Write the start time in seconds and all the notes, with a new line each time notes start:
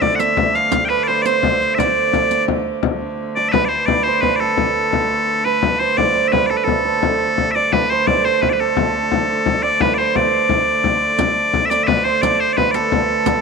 Already playing: D3 A3 A4 C5 E5
0.02 D5, frame drum
0.15 F#5
0.19 E5, riq
0.37 E5, frame drum
0.55 F5, riq, frame drum
0.72 riq, frame drum
0.85 B4 G5
0.90 B4
1.03 D5
1.07 C5
1.22 C5 D5, riq
1.43 frame drum
1.61 riq, frame drum
1.75 D5 E5, frame drum
1.79 D5, riq
2.13 riq, frame drum
2.31 riq, frame drum
2.48 frame drum
2.66 frame drum
2.83 D3 A3, frame drum
3.01 frame drum
3.36 D5
3.49 B4 E5
3.53 B4, frame drum
3.65 C5 D5
3.86 D5, frame drum
4.03 C5, frame drum
4.21 B4, frame drum
4.36 D5
4.40 A4
4.58 frame drum
4.93 frame drum
5.10 frame drum
5.45 B4
5.63 frame drum
5.79 C5
5.97 D5, frame drum
6.15 C5, frame drum
6.28 E5
6.32 B4, frame drum
6.46 A4 D5
6.51 frame drum
6.57 B4
6.64 A4, frame drum
6.85 C5
7.03 D3 A3, frame drum
7.20 frame drum
7.38 frame drum
7.51 D5 E5
7.56 D5
7.72 B4, frame drum
7.90 C5
8.07 D5, frame drum
8.25 C5, frame drum
8.42 B4, frame drum
8.49 B4 D5
8.60 A4
8.77 frame drum
9.12 frame drum
9.29 frame drum
9.46 frame drum
9.63 D5
9.80 B4, frame drum
9.94 C5 D5
10.00 C5
10.15 D5, frame drum
10.49 frame drum
10.84 frame drum
11.19 D3 A3, riq, frame drum
11.36 frame drum
11.53 frame drum
11.66 E5
11.70 D5, riq
11.84 B4 E5
11.88 frame drum
12.04 C5
12.21 D5, riq, frame drum
12.40 C5, frame drum
12.53 D5
12.57 B4, frame drum
12.71 A4 D5, riq
12.75 A4
12.92 frame drum
12.97 A4
13.26 riq, frame drum